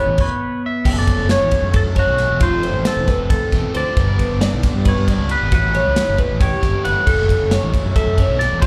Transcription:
Already playing: clean electric guitar A2 E3 B3 B4 C#5, overdriven electric guitar A2 E3 G3 C#4 E4
0.07 fingered electric bass A1
0.18 clean electric guitar B4 C#5, kick, crash
0.66 clean electric guitar E5
0.84 fingered electric bass F#1, overdriven electric guitar F#2 C#3 F#3 A3 C#4, clean electric guitar A4, kick, crash
0.98 clean electric guitar D5
1.07 kick, ride
1.19 fingered electric bass F#1
1.29 clean electric guitar C#5, snare, ride
1.41 fingered electric bass A1
1.51 kick, ride
1.63 fingered electric bass F#2
1.73 clean electric guitar A4, kick, snare, ride
1.85 fingered electric bass F#2
1.96 overdriven electric guitar C#3 F#3 A3 C#4, clean electric guitar F#4 C#5, kick, ride
2.00 overdriven electric guitar F#2
2.07 fingered electric bass B1
2.17 overdriven electric guitar F#2 C#3 F#3 A3 C#4, snare, ride
2.30 fingered electric bass E1
2.40 fingered electric bass F1, overdriven electric guitar F2 C3 F3 A3 C4, clean electric guitar F4 C5, kick, ride
2.63 clean electric guitar C5, ride
2.74 fingered electric bass A1
2.85 clean electric guitar A4, snare, ride
2.97 fingered electric bass E1
3.07 clean electric guitar B4, kick, snare, ride
3.19 fingered electric bass F1
3.30 clean electric guitar A4, kick, snare, ride
3.52 fingered electric bass E1, overdriven electric guitar F2 C3 F3 A3 C4, kick, snare, ride
3.75 fingered electric bass D2, overdriven electric guitar F2 C3 F3 A3 C4, clean electric guitar C5 D5, ride
3.96 fingered electric bass G1, overdriven electric guitar G2 D3 G3 B3 D4, clean electric guitar B4, kick, ride
4.19 kick, ride
4.31 fingered electric bass G1
4.41 clean electric guitar D5, snare, ride
4.54 fingered electric bass B1
4.63 kick, snare, ride
4.75 fingered electric bass G2
4.85 clean electric guitar B4 C#5, kick, ride
4.97 fingered electric bass G2
5.08 overdriven electric guitar G2 D3 G3 B3 D4, clean electric guitar D5, kick, ride
5.19 fingered electric bass C#2
5.29 overdriven electric guitar G2 D3 G3 B3 D4, clean electric guitar B4, ride
5.41 fingered electric bass G#1
5.51 fingered electric bass A1, overdriven electric guitar A2 E3 G3 C#4 E4, clean electric guitar F#4 B4, kick, ride
5.74 clean electric guitar C#5, ride
5.86 fingered electric bass C#2
5.96 snare, ride
6.08 fingered electric bass G1
6.18 clean electric guitar B4, kick, ride
6.31 fingered electric bass A1
6.41 clean electric guitar G4 C#5, kick, snare, ride
6.61 fingered electric bass G1, overdriven electric guitar A2 E3 G3 C#4 E4, kick, snare, ride
6.84 fingered electric bass G1, overdriven electric guitar A2 E3 G3 C#4 E4, clean electric guitar B4 F#5, ride
7.06 fingered electric bass F#1, overdriven electric guitar F#2 C#3 F#3 A3 C#4, clean electric guitar A4, kick, crash
7.29 kick, ride
7.41 fingered electric bass F#1
7.51 clean electric guitar C#5, snare, ride
7.63 fingered electric bass A1
7.74 kick, ride
7.85 fingered electric bass F#2
7.96 clean electric guitar A4 E5, kick, snare, ride
8.07 fingered electric bass F#2
8.17 overdriven electric guitar F#2 C#3 F#3 A3 C#4, clean electric guitar C#5, kick, ride
8.29 fingered electric bass B1
8.39 overdriven electric guitar F#2 C#3 F#3 A3 C#4, clean electric guitar D5, snare, ride
8.51 fingered electric bass E1
8.61 fingered electric bass F1, overdriven electric guitar F2 C3 F3 A3, clean electric guitar F4 D5, kick, ride

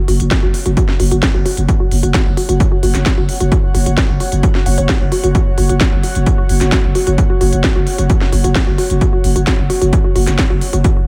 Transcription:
Already playing: analog synth pad F#4 C#5 F#5
0.08 808-style bass F#1, synth arpeggio sound F#4, open hi-hat
0.20 808-style bass F#1, closed hi-hat
0.31 synth arpeggio sound F#4, kick, snare, closed hi-hat
0.43 808-style bass F#1, synth arpeggio sound F#4
0.54 open hi-hat
0.66 808-style bass F#1, synth arpeggio sound F#4, closed hi-hat
0.77 synth arpeggio sound F#4, kick, closed hi-hat
0.89 snare
1.00 808-style bass F#1, synth arpeggio sound F#4, open hi-hat
1.11 808-style bass F#1, synth arpeggio sound F#4, closed hi-hat
1.23 kick, snare, closed hi-hat
1.34 808-style bass F#1, synth arpeggio sound F#4
1.46 synth arpeggio sound F#4, open hi-hat
1.57 808-style bass F#1, closed hi-hat
1.69 synth arpeggio sound F#4, kick, closed hi-hat
1.80 synth arpeggio sound F#4
1.91 808-style bass F#1, open hi-hat
2.03 808-style bass F#1, synth arpeggio sound F#4, closed hi-hat
2.14 synth arpeggio sound F#4, kick, snare, closed hi-hat
2.26 808-style bass F#1
2.37 synth arpeggio sound F#4, open hi-hat
2.49 808-style bass F#1, synth arpeggio sound F#4, closed hi-hat
2.60 kick, closed hi-hat
2.72 synth arpeggio sound F#4
2.83 808-style bass F#1, synth arpeggio sound F#4, open hi-hat
2.94 808-style bass F#1, snare, closed hi-hat
3.06 synth arpeggio sound F#4, kick, snare, closed hi-hat
3.17 808-style bass F#1, synth arpeggio sound F#4
3.29 open hi-hat
3.40 808-style bass F#1, synth arpeggio sound F#4, closed hi-hat
3.52 synth arpeggio sound F#4, kick, closed hi-hat
3.74 808-style bass F#1, synth arpeggio sound F#4, open hi-hat
3.86 808-style bass F#1, synth arpeggio sound F#4, closed hi-hat
3.98 kick, snare, closed hi-hat
4.09 808-style bass F#1, synth arpeggio sound F#4
4.20 synth arpeggio sound F#4, open hi-hat
4.32 808-style bass F#1, closed hi-hat
4.43 synth arpeggio sound F#4, kick, closed hi-hat
4.55 synth arpeggio sound F#4, snare
4.66 808-style bass F#1, synth arpeggio sound F#5, open hi-hat
4.78 808-style bass F#1, synth arpeggio sound C#5, closed hi-hat
4.89 synth arpeggio sound G4, kick, snare, closed hi-hat
5.01 808-style bass F#1
5.12 synth arpeggio sound F#4, open hi-hat
5.24 808-style bass F#1, synth arpeggio sound F#4, closed hi-hat
5.35 synth arpeggio sound F#4, kick, closed hi-hat
5.58 808-style bass F#1, synth arpeggio sound F#4, open hi-hat
5.69 808-style bass F#1, synth arpeggio sound F#4, closed hi-hat
5.81 kick, snare, closed hi-hat
5.92 808-style bass F#1, synth arpeggio sound F#4
6.03 synth arpeggio sound F#4, open hi-hat
6.15 808-style bass F#1, closed hi-hat
6.26 synth arpeggio sound F#4, kick, closed hi-hat
6.38 synth arpeggio sound F#4
6.49 808-style bass F#1, open hi-hat
6.61 808-style bass F#1, synth arpeggio sound F#4, snare, closed hi-hat
6.72 synth arpeggio sound F#4, kick, snare, closed hi-hat
6.84 808-style bass F#1
6.95 synth arpeggio sound F#4, open hi-hat
7.07 808-style bass F#1, synth arpeggio sound F#4, closed hi-hat
7.18 kick, closed hi-hat
7.30 synth arpeggio sound F#4
7.41 808-style bass F#1, synth arpeggio sound F#4, open hi-hat
7.53 808-style bass F#1, closed hi-hat
7.64 synth arpeggio sound F#4, kick, snare, closed hi-hat
7.76 808-style bass F#1, synth arpeggio sound F#4
7.87 open hi-hat
7.98 808-style bass F#1, synth arpeggio sound F#4, closed hi-hat
8.10 synth arpeggio sound F#4, kick, closed hi-hat
8.21 snare
8.32 808-style bass F#1, synth arpeggio sound F#4, open hi-hat
8.44 808-style bass F#1, synth arpeggio sound F#4, closed hi-hat
8.55 kick, snare, closed hi-hat
8.67 808-style bass F#1, synth arpeggio sound F#4
8.78 synth arpeggio sound F#4, open hi-hat
8.90 808-style bass F#1, closed hi-hat
9.01 synth arpeggio sound F#4, kick, closed hi-hat
9.13 synth arpeggio sound F#4
9.24 808-style bass F#1, open hi-hat
9.36 808-style bass F#1, synth arpeggio sound F#4, closed hi-hat
9.47 synth arpeggio sound F#4, kick, snare, closed hi-hat
9.58 808-style bass F#1
9.70 synth arpeggio sound F#4, open hi-hat
9.82 808-style bass F#1, synth arpeggio sound F#4, closed hi-hat
9.93 kick, closed hi-hat
10.04 synth arpeggio sound F#4
10.16 808-style bass F#1, synth arpeggio sound F#4, open hi-hat
10.27 808-style bass F#1, snare, closed hi-hat
10.39 synth arpeggio sound F#4, kick, snare, closed hi-hat
10.50 808-style bass F#1, synth arpeggio sound F#4
10.61 open hi-hat
10.73 808-style bass F#1, synth arpeggio sound F#4, closed hi-hat
10.84 synth arpeggio sound F#4, kick, closed hi-hat

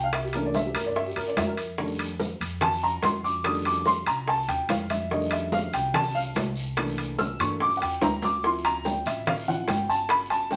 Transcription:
Already playing: upright bass C2
0.04 upright piano F5
0.12 upright piano E5, high bongo, high conga, high timbale, long guiro
0.24 upright piano G4
0.33 upright piano E3 A3 A#3 D4 A#4, high bongo, high conga, high timbale
0.46 upright piano D5
0.54 upright piano E5, high bongo, high conga, short guiro
0.66 upright piano G4
0.74 upright bass G2, upright piano A#4, high conga, high timbale, short guiro
0.86 upright piano D5
0.95 upright piano E5, high bongo, high conga, long guiro
1.07 upright piano G4
1.16 upright bass G2, upright piano A#4, high bongo, high conga, high timbale
1.27 upright piano D5
1.37 upright bass F2, upright piano E5, high bongo, low bongo, high conga, high timbale, low timbale, short guiro
1.47 upright piano A#4
1.57 high bongo, high timbale, short guiro
1.78 upright piano D#3 G3 A3 D4, high bongo, high conga, long guiro
1.99 high conga, high timbale
2.20 high bongo, high conga, short guiro
2.40 upright bass F2, high conga, high timbale, short guiro
2.61 upright piano A5, high bongo, high conga, low conga, high timbale, long guiro
2.83 upright piano A#5, high conga
3.03 upright bass F2, upright piano C6, high bongo, low bongo, high conga, high timbale, low timbale, short guiro
3.24 upright piano D6, short guiro
3.44 upright piano D#3 G3 A3 D4 D#6, high bongo, high conga, high timbale, long guiro
3.65 upright piano D6, high bongo, high conga, high timbale
3.86 upright piano C6, high bongo, high conga, short guiro
4.06 upright bass C2, upright piano A#5, high conga, high timbale, short guiro
4.27 upright piano A5, high bongo, high conga, long guiro
4.48 upright bass D#2, upright piano G5, high bongo, high conga, high timbale
4.69 upright bass F2, upright piano F5, high bongo, low bongo, high conga, high timbale, short guiro
4.89 upright piano E5, high bongo, high conga, high timbale, short guiro
5.10 upright piano D#3 G3 A3 D4 D#5, high bongo, long guiro
5.31 upright piano E5, high conga, high timbale
5.52 upright piano F5, high bongo, high conga, short guiro
5.73 upright bass C2, upright piano G5, high conga, high timbale, short guiro
5.94 upright piano A5, high bongo, high conga, low conga, high timbale, long guiro
6.15 upright piano F5, high conga
6.35 upright bass C2, high bongo, low bongo, high conga, high timbale, low timbale, short guiro
6.56 short guiro
6.76 upright piano E3 A3 A#3 D4, high bongo, high conga, high timbale, long guiro
6.98 high bongo, high conga, high timbale
7.19 upright piano E6, high bongo, high conga, short guiro
7.39 upright bass G2, upright piano E3 A3 A#3 D4 C#6, high conga, high timbale, short guiro
7.60 upright piano D6, high bongo, high conga, long guiro
7.77 upright piano F#5, high bongo
7.82 upright bass E2, upright piano G5, high conga, high timbale
8.01 upright bass D2, upright piano A#5, high bongo, low bongo, high conga, high timbale, short guiro
8.22 upright piano D6, high bongo, high conga, low timbale, short guiro
8.43 upright piano F3 C4 E4 C6, high bongo, high conga, long guiro
8.64 upright piano A#5, high conga, high timbale
8.85 upright piano G5, high bongo, high conga, short guiro
9.06 upright bass A1, upright piano E5, high conga, high timbale, short guiro
9.26 upright piano F5, high bongo, high conga, low conga, high timbale, long guiro
9.48 upright piano F3 C4 E4 F#5, high conga, low conga
9.68 upright bass G1, upright piano G5, high bongo, low bongo, high conga, high timbale, short guiro
9.89 upright piano A5, short guiro
10.09 upright piano B5, high bongo, high conga, high timbale, long guiro
10.30 upright piano A5, high bongo, high conga, high timbale
10.51 upright piano G5, high bongo, high conga, short guiro

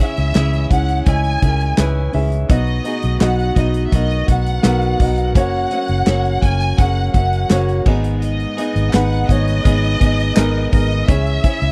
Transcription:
Already playing: upright piano C#3
0.00 upright piano C#4 E4 G#4 E5, clean electric guitar C#4 E4 G#4, violin section E5
0.17 fingered electric bass C#2, closed hi-hat
0.35 fingered electric bass C#2, clean electric guitar C#3 E3 C#4 E4 G#4, upright piano C#4 E4 G#4 E5, snare, clap, closed hi-hat
0.53 closed hi-hat
0.71 fingered electric bass C#2, upright piano C#4 E4 G#4 F#5, clean electric guitar C#4 E4 G#4, violin section F#5, kick, closed hi-hat
0.89 closed hi-hat
1.06 fingered electric bass C#2, clean electric guitar E3 C#4 E4 G#4, upright piano C#4 E4 G#4 D#5, violin section G#5, kick, closed hi-hat
1.24 closed hi-hat
1.41 fingered electric bass C#2, upright piano C#4 E4 G#4 A#4, clean electric guitar C#4 E4 G#4, kick, closed hi-hat
1.60 closed hi-hat
1.77 fingered electric bass C#2, clean electric guitar C#3 E3 C#4 E4 G#4, upright piano C#4 E4 G#4 B4, snare, clap, closed hi-hat
2.13 fingered electric bass C#2, upright piano C#4 E4 G#4 E5, open hi-hat
2.32 closed hi-hat
2.49 fingered electric bass B1, clean electric guitar B2 F#3 B3 D#4 F#4, upright piano B2 B3 D#4 F#4 D#5, violin section D#5, kick, closed hi-hat
2.67 closed hi-hat
2.84 upright piano B3 D#4 F#4 G#4, clean electric guitar B3 D#4 F#4, closed hi-hat
3.02 fingered electric bass B1, closed hi-hat
3.20 fingered electric bass B1, clean electric guitar B2 F#3 B3 D#4 F#4, upright piano B3 D#4 F#4 D#5, violin section F#5, snare, clap, closed hi-hat
3.39 closed hi-hat
3.55 fingered electric bass B1, upright piano B3 D#4 F#4 D#5, clean electric guitar B3 D#4 F#4, violin section D#5, kick, closed hi-hat
3.74 closed hi-hat
3.86 violin section E5
3.91 fingered electric bass B1, clean electric guitar F#3 B3 D#4 F#4, upright piano B3 D#4 F#4 A#4, violin section D#5, kick, closed hi-hat
4.11 closed hi-hat
4.27 fingered electric bass B1, upright piano B3 D#4 F#4, clean electric guitar B3 D#4 F#4, violin section F#5, kick, closed hi-hat
4.46 closed hi-hat
4.63 fingered electric bass B1, clean electric guitar B2 F#3 B3 D#4 F#4, upright piano B3 D#4 F#4 A#4, snare, clap, closed hi-hat
4.82 closed hi-hat
5.00 fingered electric bass B1, upright piano B3 D#4 F#4 D#5, kick, open hi-hat
5.18 closed hi-hat
5.34 fingered electric bass F#1, clean electric guitar F#2 C#3 F#3 A#3 C#4 F#4, upright piano A#3 C#4 F#4 C#5, violin section F#5, kick, closed hi-hat
5.70 clean electric guitar F#3 A#3 C#4 F#4, upright piano A#3 C#4 F#4 C#5, closed hi-hat
5.88 fingered electric bass F#1, closed hi-hat
6.06 fingered electric bass F#1, clean electric guitar F#2 C#3 F#3 A#3 C#4 F#4, upright piano A#3 C#4 F#4 C#5, snare, clap, closed hi-hat
6.25 closed hi-hat
6.41 fingered electric bass F#1, clean electric guitar F#3 A#3 C#4 F#4, upright piano A#3 C#4 F#4 A#4, violin section G#5, kick, closed hi-hat
6.60 closed hi-hat
6.78 fingered electric bass F#1, clean electric guitar F#3 A#3 C#4 F#4, upright piano A#3 C#4 F#4 G#4, violin section F#5, kick, closed hi-hat
7.13 fingered electric bass F#1, clean electric guitar F#3 A#3 C#4 F#4, upright piano A#3 C#4 F#4 E5, violin section F#5, kick, closed hi-hat
7.33 closed hi-hat
7.49 fingered electric bass F#1, clean electric guitar F#2 C#3 F#3 A#3 C#4 F#4, upright piano A#3 C#4 F#4 C#5, snare, clap, closed hi-hat
7.68 closed hi-hat
7.86 fingered electric bass G#1, clean electric guitar G#2 D#3 G#3 B3 D#4 G#4, upright piano G#2 B3 D#4 G#4 D#5, kick, crash
8.04 closed hi-hat
8.21 violin section D#5, closed hi-hat
8.40 closed hi-hat
8.57 clean electric guitar G#3 B3 D#4 G#4, upright piano B3 D#4 G#4 D#5, closed hi-hat
8.76 fingered electric bass G#1, closed hi-hat
8.91 fingered electric bass G#1, clean electric guitar G#2 D#3 G#3 B3 D#4 G#4, upright piano B3 D#4, violin section F#5, snare, clap, closed hi-hat
8.95 upright piano G#4 B4
9.13 closed hi-hat
9.28 fingered electric bass G#1, clean electric guitar G#3 B3 D#4 G#4, upright piano B3 D#4 G#4 C#5, violin section D#5, kick, closed hi-hat
9.47 closed hi-hat
9.64 fingered electric bass G#1, clean electric guitar G#3 B3 D#4 G#4, upright piano B3 D#4 G#4 D#5, kick, closed hi-hat
9.84 closed hi-hat
9.99 fingered electric bass G#1, clean electric guitar G#3 B3 D#4 G#4, upright piano B3 D#4 G#4 D#5, kick, closed hi-hat
10.20 closed hi-hat
10.36 fingered electric bass G#1, clean electric guitar G#2 D#3 G#3 B3 D#4 G#4, upright piano B3 D#4 G#4 A#4, snare, clap, closed hi-hat
10.72 fingered electric bass G#1, upright piano B3 D#4 G#4 A#4, violin section D#5, kick, open hi-hat
10.91 closed hi-hat
11.08 fingered electric bass C#2, clean electric guitar C#3 E3 C#4 E4 G#4, upright piano C#3 C#4 E4 G#4 E5, violin section E5, kick, closed hi-hat
11.26 closed hi-hat
11.44 upright piano C#4 E4 G#4 C#5, clean electric guitar C#4 E4 G#4, kick, closed hi-hat
11.62 fingered electric bass C#2, closed hi-hat

